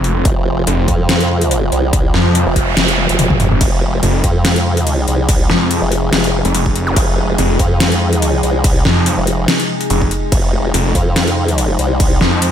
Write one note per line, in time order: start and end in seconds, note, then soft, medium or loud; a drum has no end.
0.00 0.24 F1 medium
0.00 12.52 C3 medium
0.00 12.52 F3 medium
0.00 12.52 G#3 medium
0.00 3.57 F4 medium
0.00 3.59 C5 medium
0.04 closed hi-hat soft
0.25 0.66 F1 loud
0.25 kick loud
0.25 closed hi-hat medium
0.67 0.87 F1 loud
0.67 closed hi-hat medium
0.88 1.71 F2 loud
0.88 kick medium
0.88 closed hi-hat medium
1.09 snare loud
1.09 closed hi-hat medium
1.20 closed hi-hat medium
1.41 closed hi-hat medium
1.51 closed hi-hat medium
1.72 2.12 C2 medium
1.72 closed hi-hat medium
1.93 kick loud
1.93 closed hi-hat medium
1.93 noise sweep medium
2.14 2.45 F2 loud
2.14 snare medium
2.35 closed hi-hat medium
2.46 2.75 F1 loud
2.56 kick medium
2.56 closed hi-hat medium
2.77 3.07 F1 loud
2.77 snare loud
2.77 closed hi-hat medium
2.88 closed hi-hat medium
2.98 high tom medium
3.09 3.49 F1 loud
3.09 closed hi-hat medium
3.19 closed hi-hat medium
3.19 mid tom medium
3.30 kick medium
3.30 mid tom medium
3.40 closed hi-hat medium
3.40 mid tom medium
3.51 3.59 F1 loud
3.51 mid tom medium
3.61 4.01 F1 loud
3.61 12.52 D#4 medium
3.61 10.30 G#4 medium
3.61 kick loud
3.61 closed hi-hat medium
3.61 crash medium
4.03 4.22 F1 loud
4.03 closed hi-hat medium
4.03 crash soft
4.24 5.06 F2 loud
4.24 kick medium
4.24 closed hi-hat medium
4.45 snare loud
4.45 closed hi-hat medium
4.45 crash medium
4.56 closed hi-hat medium
4.77 closed hi-hat medium
4.87 closed hi-hat medium
4.87 crash soft
5.08 5.48 C2 loud
5.08 closed hi-hat medium
5.29 kick loud
5.29 closed hi-hat medium
5.29 crash medium
5.50 5.80 F2 medium
5.50 snare medium
5.71 closed hi-hat medium
5.71 crash soft
5.82 6.11 F1 loud
5.92 closed hi-hat medium
6.13 6.43 F1 loud
6.13 snare loud
6.13 closed hi-hat medium
6.13 crash medium
6.24 closed hi-hat medium
6.45 6.95 F1 medium
6.45 closed hi-hat medium
6.55 closed hi-hat medium
6.55 crash soft
6.66 kick medium
6.76 closed hi-hat medium
6.87 zap medium
6.96 7.37 F1 loud
6.96 kick loud
6.96 closed hi-hat medium
6.96 crash medium
7.38 7.58 F1 loud
7.38 closed hi-hat medium
7.38 crash soft
7.59 8.42 F2 loud
7.59 kick medium
7.59 closed hi-hat medium
7.80 snare loud
7.80 closed hi-hat medium
7.80 crash medium
7.92 closed hi-hat medium
8.13 closed hi-hat medium
8.22 closed hi-hat medium
8.22 crash soft
8.43 8.84 C2 loud
8.43 closed hi-hat medium
8.64 kick loud
8.64 closed hi-hat medium
8.64 crash medium
8.85 9.16 F2 loud
8.85 snare medium
9.06 closed hi-hat medium
9.06 crash soft
9.18 9.47 F1 loud
9.27 closed hi-hat medium
9.48 snare loud
9.48 closed hi-hat medium
9.48 crash medium
9.60 closed hi-hat medium
9.81 closed hi-hat medium
9.90 10.10 F1 loud
9.90 closed hi-hat medium
9.90 crash soft
10.02 kick medium
10.11 closed hi-hat medium
10.32 10.73 F1 loud
10.32 12.52 C5 medium
10.32 kick loud
10.32 closed hi-hat medium
10.32 crash medium
10.74 10.94 F1 loud
10.74 closed hi-hat medium
10.74 crash soft
10.95 11.77 F2 loud
10.95 kick medium
10.95 closed hi-hat medium
11.16 snare loud
11.16 closed hi-hat medium
11.16 crash medium
11.27 closed hi-hat medium
11.48 closed hi-hat medium
11.58 closed hi-hat medium
11.58 crash soft
11.79 12.19 C2 loud
11.79 closed hi-hat medium
12.00 kick loud
12.00 closed hi-hat medium
12.00 crash medium
12.21 12.52 F2 loud
12.21 snare medium
12.42 closed hi-hat medium
12.42 crash soft